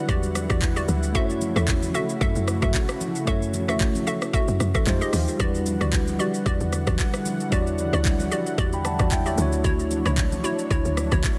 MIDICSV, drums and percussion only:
0, 0, Header, 1, 2, 480
1, 0, Start_track
1, 0, Tempo, 530973
1, 1040, Time_signature, 4, 2, 24, 8
1, 10293, End_track
2, 0, Start_track
2, 0, Title_t, "Drums"
2, 79, Note_on_c, 9, 36, 116
2, 80, Note_on_c, 9, 64, 72
2, 81, Note_on_c, 9, 82, 75
2, 170, Note_off_c, 9, 36, 0
2, 170, Note_off_c, 9, 64, 0
2, 171, Note_off_c, 9, 82, 0
2, 209, Note_on_c, 9, 82, 55
2, 300, Note_off_c, 9, 82, 0
2, 319, Note_on_c, 9, 37, 98
2, 320, Note_on_c, 9, 63, 57
2, 321, Note_on_c, 9, 82, 100
2, 410, Note_off_c, 9, 37, 0
2, 410, Note_off_c, 9, 63, 0
2, 411, Note_off_c, 9, 82, 0
2, 450, Note_on_c, 9, 82, 59
2, 451, Note_on_c, 9, 37, 100
2, 453, Note_on_c, 9, 36, 99
2, 453, Note_on_c, 9, 63, 70
2, 541, Note_off_c, 9, 82, 0
2, 542, Note_off_c, 9, 37, 0
2, 543, Note_off_c, 9, 63, 0
2, 544, Note_off_c, 9, 36, 0
2, 559, Note_on_c, 9, 36, 99
2, 560, Note_on_c, 9, 64, 66
2, 560, Note_on_c, 9, 82, 88
2, 562, Note_on_c, 9, 39, 99
2, 650, Note_off_c, 9, 36, 0
2, 650, Note_off_c, 9, 64, 0
2, 650, Note_off_c, 9, 82, 0
2, 652, Note_off_c, 9, 39, 0
2, 692, Note_on_c, 9, 82, 61
2, 782, Note_off_c, 9, 82, 0
2, 799, Note_on_c, 9, 82, 98
2, 800, Note_on_c, 9, 63, 79
2, 889, Note_off_c, 9, 82, 0
2, 890, Note_off_c, 9, 63, 0
2, 931, Note_on_c, 9, 82, 51
2, 1022, Note_off_c, 9, 82, 0
2, 1039, Note_on_c, 9, 36, 118
2, 1039, Note_on_c, 9, 82, 79
2, 1129, Note_off_c, 9, 82, 0
2, 1130, Note_off_c, 9, 36, 0
2, 1174, Note_on_c, 9, 82, 51
2, 1264, Note_off_c, 9, 82, 0
2, 1276, Note_on_c, 9, 82, 96
2, 1279, Note_on_c, 9, 63, 79
2, 1367, Note_off_c, 9, 82, 0
2, 1370, Note_off_c, 9, 63, 0
2, 1410, Note_on_c, 9, 63, 82
2, 1412, Note_on_c, 9, 37, 100
2, 1414, Note_on_c, 9, 82, 49
2, 1500, Note_off_c, 9, 63, 0
2, 1502, Note_off_c, 9, 37, 0
2, 1504, Note_off_c, 9, 82, 0
2, 1516, Note_on_c, 9, 82, 77
2, 1519, Note_on_c, 9, 64, 79
2, 1520, Note_on_c, 9, 36, 93
2, 1520, Note_on_c, 9, 39, 92
2, 1606, Note_off_c, 9, 82, 0
2, 1610, Note_off_c, 9, 64, 0
2, 1611, Note_off_c, 9, 36, 0
2, 1611, Note_off_c, 9, 39, 0
2, 1651, Note_on_c, 9, 82, 58
2, 1652, Note_on_c, 9, 63, 85
2, 1742, Note_off_c, 9, 63, 0
2, 1742, Note_off_c, 9, 82, 0
2, 1759, Note_on_c, 9, 63, 68
2, 1759, Note_on_c, 9, 82, 69
2, 1850, Note_off_c, 9, 63, 0
2, 1850, Note_off_c, 9, 82, 0
2, 1892, Note_on_c, 9, 82, 50
2, 1982, Note_off_c, 9, 82, 0
2, 1999, Note_on_c, 9, 36, 114
2, 2000, Note_on_c, 9, 64, 77
2, 2001, Note_on_c, 9, 82, 74
2, 2090, Note_off_c, 9, 36, 0
2, 2090, Note_off_c, 9, 64, 0
2, 2092, Note_off_c, 9, 82, 0
2, 2129, Note_on_c, 9, 82, 53
2, 2219, Note_off_c, 9, 82, 0
2, 2239, Note_on_c, 9, 37, 99
2, 2240, Note_on_c, 9, 63, 55
2, 2240, Note_on_c, 9, 82, 99
2, 2329, Note_off_c, 9, 37, 0
2, 2330, Note_off_c, 9, 63, 0
2, 2330, Note_off_c, 9, 82, 0
2, 2370, Note_on_c, 9, 82, 61
2, 2371, Note_on_c, 9, 37, 97
2, 2372, Note_on_c, 9, 63, 72
2, 2374, Note_on_c, 9, 36, 99
2, 2461, Note_off_c, 9, 82, 0
2, 2462, Note_off_c, 9, 37, 0
2, 2463, Note_off_c, 9, 63, 0
2, 2464, Note_off_c, 9, 36, 0
2, 2479, Note_on_c, 9, 36, 96
2, 2479, Note_on_c, 9, 82, 92
2, 2480, Note_on_c, 9, 64, 68
2, 2481, Note_on_c, 9, 39, 97
2, 2570, Note_off_c, 9, 36, 0
2, 2570, Note_off_c, 9, 64, 0
2, 2570, Note_off_c, 9, 82, 0
2, 2572, Note_off_c, 9, 39, 0
2, 2611, Note_on_c, 9, 37, 102
2, 2612, Note_on_c, 9, 82, 59
2, 2702, Note_off_c, 9, 37, 0
2, 2702, Note_off_c, 9, 82, 0
2, 2719, Note_on_c, 9, 82, 100
2, 2720, Note_on_c, 9, 63, 76
2, 2809, Note_off_c, 9, 82, 0
2, 2810, Note_off_c, 9, 63, 0
2, 2851, Note_on_c, 9, 82, 52
2, 2942, Note_off_c, 9, 82, 0
2, 2960, Note_on_c, 9, 36, 118
2, 2960, Note_on_c, 9, 82, 80
2, 3050, Note_off_c, 9, 36, 0
2, 3050, Note_off_c, 9, 82, 0
2, 3094, Note_on_c, 9, 82, 52
2, 3185, Note_off_c, 9, 82, 0
2, 3197, Note_on_c, 9, 82, 101
2, 3199, Note_on_c, 9, 63, 78
2, 3288, Note_off_c, 9, 82, 0
2, 3290, Note_off_c, 9, 63, 0
2, 3330, Note_on_c, 9, 63, 82
2, 3333, Note_on_c, 9, 37, 99
2, 3335, Note_on_c, 9, 82, 52
2, 3421, Note_off_c, 9, 63, 0
2, 3423, Note_off_c, 9, 37, 0
2, 3425, Note_off_c, 9, 82, 0
2, 3437, Note_on_c, 9, 82, 76
2, 3440, Note_on_c, 9, 64, 77
2, 3441, Note_on_c, 9, 36, 91
2, 3442, Note_on_c, 9, 39, 96
2, 3528, Note_off_c, 9, 82, 0
2, 3530, Note_off_c, 9, 64, 0
2, 3531, Note_off_c, 9, 36, 0
2, 3532, Note_off_c, 9, 39, 0
2, 3572, Note_on_c, 9, 63, 79
2, 3572, Note_on_c, 9, 82, 56
2, 3662, Note_off_c, 9, 63, 0
2, 3663, Note_off_c, 9, 82, 0
2, 3680, Note_on_c, 9, 63, 69
2, 3680, Note_on_c, 9, 82, 73
2, 3770, Note_off_c, 9, 82, 0
2, 3771, Note_off_c, 9, 63, 0
2, 3812, Note_on_c, 9, 82, 50
2, 3815, Note_on_c, 9, 37, 98
2, 3903, Note_off_c, 9, 82, 0
2, 3905, Note_off_c, 9, 37, 0
2, 3920, Note_on_c, 9, 36, 114
2, 3921, Note_on_c, 9, 64, 76
2, 3922, Note_on_c, 9, 82, 74
2, 4010, Note_off_c, 9, 36, 0
2, 4011, Note_off_c, 9, 64, 0
2, 4012, Note_off_c, 9, 82, 0
2, 4050, Note_on_c, 9, 82, 53
2, 4140, Note_off_c, 9, 82, 0
2, 4160, Note_on_c, 9, 37, 98
2, 4160, Note_on_c, 9, 63, 55
2, 4161, Note_on_c, 9, 82, 99
2, 4250, Note_off_c, 9, 37, 0
2, 4251, Note_off_c, 9, 63, 0
2, 4252, Note_off_c, 9, 82, 0
2, 4291, Note_on_c, 9, 82, 60
2, 4292, Note_on_c, 9, 37, 98
2, 4294, Note_on_c, 9, 36, 100
2, 4294, Note_on_c, 9, 63, 72
2, 4382, Note_off_c, 9, 82, 0
2, 4383, Note_off_c, 9, 37, 0
2, 4384, Note_off_c, 9, 63, 0
2, 4385, Note_off_c, 9, 36, 0
2, 4400, Note_on_c, 9, 36, 96
2, 4401, Note_on_c, 9, 82, 86
2, 4402, Note_on_c, 9, 64, 65
2, 4403, Note_on_c, 9, 39, 102
2, 4490, Note_off_c, 9, 36, 0
2, 4491, Note_off_c, 9, 82, 0
2, 4492, Note_off_c, 9, 64, 0
2, 4493, Note_off_c, 9, 39, 0
2, 4533, Note_on_c, 9, 82, 60
2, 4623, Note_off_c, 9, 82, 0
2, 4636, Note_on_c, 9, 37, 90
2, 4639, Note_on_c, 9, 46, 83
2, 4639, Note_on_c, 9, 82, 102
2, 4641, Note_on_c, 9, 63, 75
2, 4726, Note_off_c, 9, 37, 0
2, 4729, Note_off_c, 9, 46, 0
2, 4729, Note_off_c, 9, 82, 0
2, 4731, Note_off_c, 9, 63, 0
2, 4771, Note_on_c, 9, 82, 53
2, 4862, Note_off_c, 9, 82, 0
2, 4879, Note_on_c, 9, 82, 83
2, 4880, Note_on_c, 9, 36, 111
2, 4970, Note_off_c, 9, 36, 0
2, 4970, Note_off_c, 9, 82, 0
2, 5015, Note_on_c, 9, 82, 53
2, 5105, Note_off_c, 9, 82, 0
2, 5118, Note_on_c, 9, 82, 98
2, 5120, Note_on_c, 9, 63, 77
2, 5208, Note_off_c, 9, 82, 0
2, 5210, Note_off_c, 9, 63, 0
2, 5250, Note_on_c, 9, 63, 88
2, 5253, Note_on_c, 9, 37, 100
2, 5255, Note_on_c, 9, 82, 51
2, 5341, Note_off_c, 9, 63, 0
2, 5343, Note_off_c, 9, 37, 0
2, 5345, Note_off_c, 9, 82, 0
2, 5357, Note_on_c, 9, 82, 78
2, 5360, Note_on_c, 9, 64, 79
2, 5361, Note_on_c, 9, 36, 92
2, 5361, Note_on_c, 9, 39, 101
2, 5447, Note_off_c, 9, 82, 0
2, 5450, Note_off_c, 9, 64, 0
2, 5451, Note_off_c, 9, 36, 0
2, 5452, Note_off_c, 9, 39, 0
2, 5492, Note_on_c, 9, 63, 83
2, 5492, Note_on_c, 9, 82, 60
2, 5582, Note_off_c, 9, 63, 0
2, 5582, Note_off_c, 9, 82, 0
2, 5599, Note_on_c, 9, 63, 67
2, 5600, Note_on_c, 9, 82, 68
2, 5690, Note_off_c, 9, 63, 0
2, 5690, Note_off_c, 9, 82, 0
2, 5733, Note_on_c, 9, 82, 51
2, 5823, Note_off_c, 9, 82, 0
2, 5840, Note_on_c, 9, 36, 113
2, 5840, Note_on_c, 9, 64, 71
2, 5842, Note_on_c, 9, 82, 78
2, 5930, Note_off_c, 9, 36, 0
2, 5930, Note_off_c, 9, 64, 0
2, 5932, Note_off_c, 9, 82, 0
2, 5970, Note_on_c, 9, 82, 54
2, 6060, Note_off_c, 9, 82, 0
2, 6079, Note_on_c, 9, 63, 57
2, 6080, Note_on_c, 9, 37, 93
2, 6081, Note_on_c, 9, 82, 99
2, 6170, Note_off_c, 9, 37, 0
2, 6170, Note_off_c, 9, 63, 0
2, 6172, Note_off_c, 9, 82, 0
2, 6211, Note_on_c, 9, 82, 60
2, 6212, Note_on_c, 9, 37, 105
2, 6212, Note_on_c, 9, 63, 73
2, 6214, Note_on_c, 9, 36, 98
2, 6302, Note_off_c, 9, 82, 0
2, 6303, Note_off_c, 9, 37, 0
2, 6303, Note_off_c, 9, 63, 0
2, 6304, Note_off_c, 9, 36, 0
2, 6319, Note_on_c, 9, 36, 98
2, 6320, Note_on_c, 9, 64, 66
2, 6321, Note_on_c, 9, 82, 90
2, 6322, Note_on_c, 9, 39, 101
2, 6410, Note_off_c, 9, 36, 0
2, 6411, Note_off_c, 9, 64, 0
2, 6411, Note_off_c, 9, 82, 0
2, 6412, Note_off_c, 9, 39, 0
2, 6451, Note_on_c, 9, 37, 97
2, 6452, Note_on_c, 9, 82, 59
2, 6542, Note_off_c, 9, 37, 0
2, 6542, Note_off_c, 9, 82, 0
2, 6559, Note_on_c, 9, 82, 100
2, 6560, Note_on_c, 9, 63, 78
2, 6649, Note_off_c, 9, 82, 0
2, 6650, Note_off_c, 9, 63, 0
2, 6692, Note_on_c, 9, 82, 54
2, 6782, Note_off_c, 9, 82, 0
2, 6799, Note_on_c, 9, 36, 114
2, 6799, Note_on_c, 9, 82, 82
2, 6890, Note_off_c, 9, 36, 0
2, 6890, Note_off_c, 9, 82, 0
2, 6934, Note_on_c, 9, 82, 52
2, 7024, Note_off_c, 9, 82, 0
2, 7036, Note_on_c, 9, 82, 94
2, 7039, Note_on_c, 9, 63, 77
2, 7126, Note_off_c, 9, 82, 0
2, 7129, Note_off_c, 9, 63, 0
2, 7170, Note_on_c, 9, 63, 84
2, 7172, Note_on_c, 9, 37, 101
2, 7174, Note_on_c, 9, 82, 51
2, 7260, Note_off_c, 9, 63, 0
2, 7262, Note_off_c, 9, 37, 0
2, 7264, Note_off_c, 9, 82, 0
2, 7276, Note_on_c, 9, 82, 78
2, 7279, Note_on_c, 9, 64, 73
2, 7280, Note_on_c, 9, 36, 93
2, 7281, Note_on_c, 9, 39, 98
2, 7366, Note_off_c, 9, 82, 0
2, 7370, Note_off_c, 9, 36, 0
2, 7370, Note_off_c, 9, 64, 0
2, 7371, Note_off_c, 9, 39, 0
2, 7411, Note_on_c, 9, 82, 57
2, 7412, Note_on_c, 9, 63, 83
2, 7501, Note_off_c, 9, 82, 0
2, 7502, Note_off_c, 9, 63, 0
2, 7519, Note_on_c, 9, 63, 70
2, 7519, Note_on_c, 9, 82, 73
2, 7609, Note_off_c, 9, 63, 0
2, 7609, Note_off_c, 9, 82, 0
2, 7652, Note_on_c, 9, 82, 51
2, 7742, Note_off_c, 9, 82, 0
2, 7759, Note_on_c, 9, 36, 117
2, 7759, Note_on_c, 9, 64, 74
2, 7761, Note_on_c, 9, 82, 77
2, 7849, Note_off_c, 9, 36, 0
2, 7849, Note_off_c, 9, 64, 0
2, 7851, Note_off_c, 9, 82, 0
2, 7888, Note_on_c, 9, 82, 54
2, 7979, Note_off_c, 9, 82, 0
2, 7998, Note_on_c, 9, 37, 97
2, 7999, Note_on_c, 9, 63, 56
2, 7999, Note_on_c, 9, 82, 100
2, 8088, Note_off_c, 9, 37, 0
2, 8090, Note_off_c, 9, 63, 0
2, 8090, Note_off_c, 9, 82, 0
2, 8130, Note_on_c, 9, 82, 62
2, 8131, Note_on_c, 9, 37, 101
2, 8132, Note_on_c, 9, 63, 71
2, 8133, Note_on_c, 9, 36, 102
2, 8220, Note_off_c, 9, 82, 0
2, 8221, Note_off_c, 9, 37, 0
2, 8222, Note_off_c, 9, 63, 0
2, 8224, Note_off_c, 9, 36, 0
2, 8239, Note_on_c, 9, 36, 94
2, 8239, Note_on_c, 9, 64, 68
2, 8239, Note_on_c, 9, 82, 92
2, 8240, Note_on_c, 9, 39, 102
2, 8329, Note_off_c, 9, 36, 0
2, 8329, Note_off_c, 9, 64, 0
2, 8329, Note_off_c, 9, 82, 0
2, 8331, Note_off_c, 9, 39, 0
2, 8371, Note_on_c, 9, 82, 60
2, 8462, Note_off_c, 9, 82, 0
2, 8478, Note_on_c, 9, 82, 104
2, 8479, Note_on_c, 9, 63, 76
2, 8569, Note_off_c, 9, 82, 0
2, 8570, Note_off_c, 9, 63, 0
2, 8610, Note_on_c, 9, 82, 53
2, 8701, Note_off_c, 9, 82, 0
2, 8719, Note_on_c, 9, 36, 115
2, 8719, Note_on_c, 9, 82, 82
2, 8809, Note_off_c, 9, 82, 0
2, 8810, Note_off_c, 9, 36, 0
2, 8854, Note_on_c, 9, 82, 53
2, 8944, Note_off_c, 9, 82, 0
2, 8957, Note_on_c, 9, 82, 98
2, 8958, Note_on_c, 9, 63, 81
2, 9047, Note_off_c, 9, 82, 0
2, 9049, Note_off_c, 9, 63, 0
2, 9090, Note_on_c, 9, 63, 89
2, 9091, Note_on_c, 9, 37, 99
2, 9093, Note_on_c, 9, 82, 50
2, 9180, Note_off_c, 9, 63, 0
2, 9182, Note_off_c, 9, 37, 0
2, 9184, Note_off_c, 9, 82, 0
2, 9196, Note_on_c, 9, 82, 76
2, 9199, Note_on_c, 9, 64, 74
2, 9200, Note_on_c, 9, 36, 91
2, 9200, Note_on_c, 9, 39, 98
2, 9286, Note_off_c, 9, 82, 0
2, 9289, Note_off_c, 9, 64, 0
2, 9290, Note_off_c, 9, 36, 0
2, 9291, Note_off_c, 9, 39, 0
2, 9331, Note_on_c, 9, 63, 82
2, 9331, Note_on_c, 9, 82, 57
2, 9421, Note_off_c, 9, 82, 0
2, 9422, Note_off_c, 9, 63, 0
2, 9439, Note_on_c, 9, 63, 70
2, 9439, Note_on_c, 9, 82, 71
2, 9529, Note_off_c, 9, 63, 0
2, 9529, Note_off_c, 9, 82, 0
2, 9571, Note_on_c, 9, 82, 48
2, 9662, Note_off_c, 9, 82, 0
2, 9679, Note_on_c, 9, 36, 113
2, 9679, Note_on_c, 9, 64, 74
2, 9681, Note_on_c, 9, 82, 76
2, 9770, Note_off_c, 9, 36, 0
2, 9770, Note_off_c, 9, 64, 0
2, 9771, Note_off_c, 9, 82, 0
2, 9809, Note_on_c, 9, 82, 56
2, 9900, Note_off_c, 9, 82, 0
2, 9919, Note_on_c, 9, 37, 98
2, 9919, Note_on_c, 9, 63, 57
2, 9920, Note_on_c, 9, 82, 100
2, 10009, Note_off_c, 9, 37, 0
2, 10010, Note_off_c, 9, 63, 0
2, 10011, Note_off_c, 9, 82, 0
2, 10050, Note_on_c, 9, 82, 62
2, 10051, Note_on_c, 9, 37, 102
2, 10052, Note_on_c, 9, 63, 70
2, 10054, Note_on_c, 9, 36, 102
2, 10141, Note_off_c, 9, 82, 0
2, 10142, Note_off_c, 9, 37, 0
2, 10143, Note_off_c, 9, 63, 0
2, 10144, Note_off_c, 9, 36, 0
2, 10159, Note_on_c, 9, 36, 95
2, 10160, Note_on_c, 9, 64, 66
2, 10161, Note_on_c, 9, 82, 90
2, 10162, Note_on_c, 9, 39, 97
2, 10250, Note_off_c, 9, 36, 0
2, 10250, Note_off_c, 9, 64, 0
2, 10251, Note_off_c, 9, 82, 0
2, 10253, Note_off_c, 9, 39, 0
2, 10293, End_track
0, 0, End_of_file